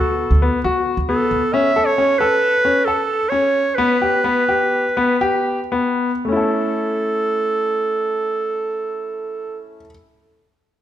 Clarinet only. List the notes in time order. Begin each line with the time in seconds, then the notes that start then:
Already playing: A4
1.09 A4
1.54 E5
1.85 C#5
2.19 B4
2.85 A4
3.29 C#5
3.75 B4
6.26 A4